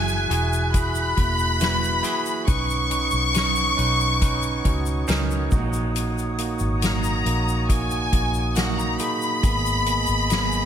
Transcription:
0.00 0.26 F#1 medium
0.00 0.27 E3 medium
0.00 0.30 E4 medium
0.00 0.30 F#4 medium
0.00 0.31 G#4 loud
0.00 2.44 E5 medium
0.00 0.74 G#5 loud
0.00 2.44 G#5 medium
0.00 2.44 F#6 medium
0.08 shaker soft
0.30 1.13 E1 medium
0.30 0.71 E4 medium
0.30 0.72 F#4 medium
0.30 0.72 G#4 loud
0.30 closed hi-hat medium
0.53 shaker soft
0.73 1.15 E4 medium
0.73 1.15 F#4 medium
0.73 1.15 G#4 medium
0.73 2.48 B5 loud
0.73 kick medium
0.73 closed hi-hat medium
0.73 shaker medium
0.95 shaker medium
1.16 2.00 E1 loud
1.16 1.59 A#3 medium
1.16 1.58 E4 medium
1.16 1.58 F#4 medium
1.16 kick medium
1.16 closed hi-hat medium
1.39 shaker soft
1.60 2.02 E4 medium
1.60 2.02 F#4 medium
1.60 2.02 B4 loud
1.60 snare loud
1.60 closed hi-hat medium
1.60 shaker medium
1.84 shaker soft
2.03 2.45 E4 loud
2.03 2.45 F#4 medium
2.03 2.45 G#4 loud
2.03 snare soft
2.03 closed hi-hat medium
2.03 shaker soft
2.26 shaker soft
2.47 3.09 B1 medium
2.47 3.74 B2 medium
2.47 2.89 C#4 medium
2.47 2.89 D#4 medium
2.47 2.89 B4 loud
2.47 9.16 C#5 medium
2.47 9.13 F#5 medium
2.47 5.48 C#6 loud
2.47 10.65 D#6 medium
2.47 kick loud
2.47 closed hi-hat medium
2.47 shaker medium
2.70 shaker soft
2.90 3.32 C#4 medium
2.90 3.32 D#4 medium
2.90 3.32 B4 medium
2.90 closed hi-hat medium
2.90 shaker soft
3.11 3.74 B1 medium
3.11 shaker soft
3.33 3.75 C#4 medium
3.33 3.75 D#4 medium
3.33 3.76 B4 medium
3.33 snare loud
3.33 closed hi-hat medium
3.33 shaker medium
3.56 shaker soft
3.77 4.61 B1 medium
3.77 4.19 C#4 medium
3.77 4.19 D#4 medium
3.77 4.19 B4 medium
3.77 closed hi-hat medium
4.01 shaker soft
4.21 4.63 C#4 medium
4.21 4.63 D#4 medium
4.21 4.63 B4 medium
4.21 kick medium
4.21 closed hi-hat medium
4.21 shaker medium
4.42 shaker soft
4.64 5.05 C#2 medium
4.64 5.06 C#4 medium
4.64 5.06 D#4 medium
4.64 5.07 F#4 medium
4.64 kick medium
4.64 closed hi-hat medium
4.86 shaker soft
5.08 5.49 C#2 medium
5.08 5.49 C#4 loud
5.08 5.50 D#4 loud
5.08 5.50 A#4 loud
5.08 snare loud
5.08 closed hi-hat medium
5.08 shaker medium
5.31 shaker soft
5.51 6.57 A#1 medium
5.51 6.79 A#2 medium
5.51 5.58 G#3 medium
5.51 6.35 D#4 medium
5.51 6.35 F#4 medium
5.51 9.39 C#6 medium
5.51 kick loud
5.51 crash medium
5.51 shaker soft
5.58 6.37 A#3 medium
5.73 shaker soft
5.96 closed hi-hat medium
5.96 shaker medium
6.18 shaker soft
6.38 6.80 A#3 medium
6.38 6.80 D#4 medium
6.38 6.81 F#4 medium
6.38 closed hi-hat medium
6.38 shaker soft
6.59 7.22 G#1 medium
6.59 shaker soft
6.82 7.24 A#3 medium
6.82 7.24 D#4 medium
6.82 7.24 F#4 medium
6.82 7.65 A#5 medium
6.82 snare medium
6.82 closed hi-hat medium
6.82 shaker medium
7.04 shaker soft
7.26 8.09 A#1 loud
7.26 7.67 A#3 medium
7.26 7.67 D#4 medium
7.26 7.68 F#4 medium
7.26 closed hi-hat medium
7.48 shaker soft
7.69 8.10 A#3 medium
7.69 8.11 D#4 medium
7.69 8.11 F#4 medium
7.69 8.57 G#5 loud
7.69 kick medium
7.69 closed hi-hat medium
7.69 shaker medium
7.90 shaker soft
8.12 8.96 A#1 medium
8.12 8.54 A#3 medium
8.12 8.54 D#4 medium
8.12 8.55 F#4 medium
8.12 kick medium
8.12 closed hi-hat medium
8.34 shaker soft
8.56 8.97 A#3 medium
8.56 8.98 D#4 medium
8.56 8.98 F#4 loud
8.56 8.78 F#5 medium
8.56 snare loud
8.56 closed hi-hat medium
8.56 shaker medium
8.78 9.00 A#5 medium
8.78 shaker soft
8.99 9.41 A#3 medium
8.99 9.41 D#4 medium
8.99 9.42 G#4 loud
8.99 10.65 B5 loud
8.99 closed hi-hat medium
8.99 shaker soft
9.22 shaker soft
9.43 10.04 G#1 medium
9.43 10.65 G#2 medium
9.43 9.85 A#3 medium
9.43 9.85 B3 medium
9.43 9.85 G#4 loud
9.43 10.65 D#5 medium
9.43 10.65 G#5 medium
9.43 kick loud
9.43 closed hi-hat medium
9.43 shaker medium
9.66 shaker soft
9.86 10.28 A#3 medium
9.86 10.28 B3 medium
9.86 10.28 G#4 medium
9.86 closed hi-hat medium
9.86 shaker soft
10.07 10.65 G#1 medium
10.07 shaker soft
10.30 10.65 A#3 medium
10.30 10.65 B3 medium
10.30 10.65 G#4 medium
10.30 snare loud
10.30 closed hi-hat medium
10.30 shaker medium
10.52 shaker soft

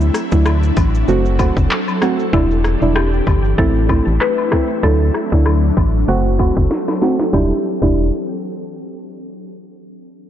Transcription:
0.00 0.11 D2 loud
0.00 2.31 F#3 medium
0.00 1.07 D4 medium
0.00 1.07 E4 medium
0.00 shaker medium
0.14 cross-stick medium
0.14 closed hi-hat medium
0.14 cabasa medium
0.14 shaker medium
0.32 0.72 D2 medium
0.32 0.49 F#3 medium
0.32 0.50 D4 medium
0.32 0.50 E4 medium
0.32 kick medium
0.32 shaker medium
0.46 cross-stick medium
0.46 high woodblock medium
0.46 shaker medium
0.63 shaker medium
0.77 1.04 A1 medium
0.77 kick medium
0.77 closed hi-hat medium
0.77 cabasa medium
0.77 high woodblock medium
0.77 shaker medium
0.95 shaker medium
1.08 1.51 F#1 loud
1.08 1.37 A3 medium
1.08 2.32 C4 medium
1.08 1.37 C4 medium
1.08 1.37 F#4 loud
1.08 2.32 A4 medium
1.08 shaker medium
1.26 shaker medium
1.39 1.60 A3 medium
1.39 1.60 C4 medium
1.39 1.60 F#4 medium
1.39 kick medium
1.39 closed hi-hat medium
1.39 cabasa medium
1.39 high woodblock medium
1.39 shaker medium
1.57 1.69 F#1 loud
1.57 kick medium
1.57 shaker medium
1.71 clap medium
1.71 shaker medium
1.88 high woodblock medium
1.88 shaker soft
2.02 2.22 A3 medium
2.02 2.23 C4 medium
2.02 2.23 F#4 medium
2.02 cross-stick loud
2.02 closed hi-hat medium
2.02 cabasa medium
2.02 shaker medium
2.19 shaker medium
2.33 2.76 E1 loud
2.33 3.57 E3 medium
2.33 2.54 G3 medium
2.33 2.54 D4 medium
2.33 3.57 D4 medium
2.33 2.98 E4 medium
2.33 2.54 E4 loud
2.33 3.57 G4 medium
2.33 kick loud
2.33 high woodblock medium
2.33 shaker medium
2.51 shaker medium
2.64 cross-stick medium
2.64 closed hi-hat medium
2.64 cabasa medium
2.64 shaker medium
2.82 3.22 E1 loud
2.82 2.99 G3 medium
2.82 3.00 D4 medium
2.82 3.00 E4 medium
2.82 shaker medium
2.96 3.54 G4 loud
2.96 cross-stick loud
2.96 high woodblock medium
2.96 shaker medium
3.13 shaker medium
3.27 3.55 G1 medium
3.27 kick medium
3.27 closed hi-hat medium
3.27 cabasa medium
3.27 high woodblock medium
3.27 shaker medium
3.45 shaker medium
3.58 4.01 A1 loud
3.58 3.87 A3 medium
3.58 4.82 A3 medium
3.58 4.82 C4 medium
3.58 3.87 C4 medium
3.58 6.06 E4 medium
3.58 3.87 E4 loud
3.58 4.23 A4 loud
3.58 kick loud
3.58 shaker medium
3.76 shaker medium
3.89 4.10 A3 medium
3.89 4.10 C4 medium
3.89 4.10 E4 medium
3.89 kick medium
3.89 closed hi-hat medium
3.89 cabasa medium
3.89 high woodblock medium
3.89 shaker medium
4.07 4.19 A1 medium
4.07 shaker medium
4.21 4.79 B4 loud
4.21 cross-stick medium
4.21 clap medium
4.21 shaker medium
4.38 high woodblock medium
4.38 shaker medium
4.52 4.72 A3 medium
4.52 4.73 C4 medium
4.52 4.73 E4 medium
4.52 kick loud
4.52 cross-stick loud
4.52 closed hi-hat medium
4.52 cabasa medium
4.52 shaker medium
4.69 shaker medium
4.83 5.11 D2 loud
4.83 5.04 F#3 loud
4.83 6.07 F#3 medium
4.83 5.04 D4 medium
4.83 6.07 D4 medium
4.83 5.04 E4 loud
4.83 6.12 A4 loud
4.83 kick loud
4.83 high woodblock medium
4.83 shaker medium
5.01 shaker medium
5.14 cross-stick medium
5.14 closed hi-hat medium
5.14 cabasa medium
5.14 shaker medium
5.32 5.72 D2 medium
5.32 5.49 F#3 medium
5.32 5.50 D4 medium
5.32 5.50 E4 medium
5.32 kick medium
5.32 shaker medium
5.46 cross-stick medium
5.46 high woodblock medium
5.46 shaker medium
5.63 shaker medium
5.77 6.05 A1 medium
5.77 kick medium
5.77 closed hi-hat medium
5.77 cabasa medium
5.77 high woodblock medium
5.77 shaker medium
5.95 shaker medium
6.08 6.51 F#1 loud
6.08 7.32 F#3 medium
6.08 6.37 A3 loud
6.08 6.37 C4 medium
6.08 7.32 C4 medium
6.08 6.98 F#4 medium
6.08 6.37 F#4 loud
6.08 7.32 A4 medium
6.08 shaker medium
6.26 shaker medium
6.39 6.60 A3 medium
6.39 6.60 C4 medium
6.39 6.60 F#4 medium
6.39 kick medium
6.39 closed hi-hat medium
6.39 cabasa medium
6.39 high woodblock medium
6.39 shaker medium
6.57 6.69 F#1 loud
6.57 kick loud
6.57 shaker medium
6.71 snare medium
6.88 snare medium
6.88 high woodblock medium
7.02 7.22 A3 medium
7.02 7.23 C4 medium
7.02 7.23 F#4 medium
7.02 snare medium
7.02 closed hi-hat medium
7.20 snare loud
7.33 7.52 E1 loud
7.33 7.52 G3 medium
7.33 7.52 D4 medium
7.33 7.52 E4 loud
7.33 7.52 G4 medium
7.33 kick loud
7.33 snare medium
7.33 high woodblock medium
7.82 8.11 E1 loud
7.82 8.04 G3 medium
7.82 8.05 D4 medium
7.82 8.05 E4 loud
7.82 8.11 G4 medium
7.82 kick loud
7.82 crash medium
7.82 high woodblock medium

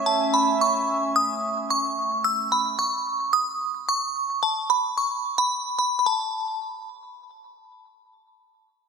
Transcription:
0.00 2.75 A3 medium
0.00 2.74 C#4 medium
0.00 2.74 E5 medium
0.00 2.75 G#5 medium
0.06 0.34 A5 medium
0.34 0.61 B5 medium
0.61 1.17 C#6 medium
1.16 1.71 D#6 medium
1.70 2.26 C#6 medium
2.24 2.50 E6 medium
2.52 2.80 B5 medium
2.79 3.35 C#6 medium
3.33 3.89 D#6 medium
3.89 4.44 C#6 medium
4.43 4.70 A5 medium
4.70 4.98 B5 medium
4.98 5.35 C#6 medium
5.38 5.76 B5 medium
5.79 5.98 B5 medium
5.99 6.06 B5 soft
6.06 6.57 A5 medium

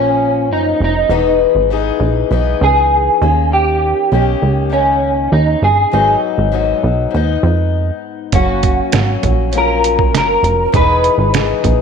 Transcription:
0.00 0.51 A#1 medium
0.00 1.09 F3 medium
0.00 1.10 A#3 medium
0.00 0.47 C#4 medium
0.00 1.10 C#4 medium
0.50 0.74 F#1 medium
0.50 0.82 D#4 medium
0.80 1.04 F1 medium
0.80 1.39 D#4 medium
1.09 1.46 E1 loud
1.09 1.69 E3 medium
1.09 1.70 B3 medium
1.09 1.72 D#4 medium
1.09 1.71 G#4 medium
1.55 1.91 G#1 medium
1.70 2.30 E3 medium
1.70 2.31 B3 medium
1.70 2.33 D#4 medium
1.70 2.32 G#4 medium
2.00 2.24 A#1 medium
2.31 2.55 B1 medium
2.31 3.21 E3 medium
2.31 3.22 B3 medium
2.31 3.22 D#4 medium
2.31 3.22 G#4 medium
2.61 3.09 C#2 medium
2.61 3.53 G#4 medium
3.22 3.94 D#2 loud
3.22 4.11 D#3 soft
3.22 4.11 A#3 medium
3.22 4.12 C#4 medium
3.53 4.69 G4 loud
4.12 4.36 B1 medium
4.12 4.69 D#3 medium
4.12 4.71 A#3 medium
4.12 4.72 C#4 medium
4.12 4.73 G4 medium
4.42 5.28 C#2 medium
4.70 5.92 D#3 soft
4.70 5.92 A#3 medium
4.70 5.32 C#4 medium
4.70 5.93 C#4 medium
5.32 5.56 D#2 medium
5.32 5.63 D#4 medium
5.62 5.86 G1 medium
5.62 6.19 G#4 medium
5.91 6.17 G#1 medium
5.91 6.51 G#2 medium
5.91 6.52 F#3 medium
5.91 6.52 B3 medium
5.91 6.53 D#4 medium
6.38 6.74 G#1 medium
6.52 7.09 G#2 medium
6.52 7.14 F#3 medium
6.52 7.13 B3 medium
6.52 7.13 D#4 medium
6.83 7.07 B1 medium
7.11 7.37 D#2 medium
7.11 8.32 G#2 medium
7.11 8.33 B3 medium
7.16 8.34 D#4 medium
7.43 7.91 F2 medium
8.32 8.81 F#1 medium
8.32 8.91 F#3 medium
8.32 8.93 A#3 medium
8.32 8.93 C#4 medium
8.32 9.57 F#4 medium
8.32 kick medium
8.32 closed hi-hat medium
8.63 kick medium
8.63 closed hi-hat medium
8.92 9.17 G#1 medium
8.92 9.50 F#3 medium
8.92 9.52 A#3 medium
8.92 9.54 C#4 medium
8.92 snare loud
8.92 closed hi-hat medium
9.23 10.15 A#1 medium
9.23 kick medium
9.23 closed hi-hat medium
9.51 10.72 F#3 medium
9.51 10.73 A#3 medium
9.51 10.73 C#4 medium
9.51 closed hi-hat medium
9.57 10.74 F4 medium
9.57 10.16 A#4 medium
9.84 closed hi-hat medium
9.99 kick medium
10.13 10.37 F#1 medium
10.13 snare loud
10.13 closed hi-hat medium
10.18 10.71 A#4 medium
10.43 10.67 F1 medium
10.43 closed hi-hat medium
10.72 11.10 E1 loud
10.72 11.32 E3 medium
10.72 11.33 B3 medium
10.72 11.35 D#4 medium
10.72 11.34 G#4 medium
10.72 11.31 B4 medium
10.72 kick loud
10.72 closed hi-hat medium
11.04 closed hi-hat medium
11.18 11.54 G#1 medium
11.33 11.81 E3 medium
11.33 11.81 B3 medium
11.33 11.81 D#4 medium
11.33 11.81 G#4 medium
11.33 snare loud
11.33 closed hi-hat medium
11.64 11.81 A#1 medium
11.64 kick medium
11.64 closed hi-hat medium

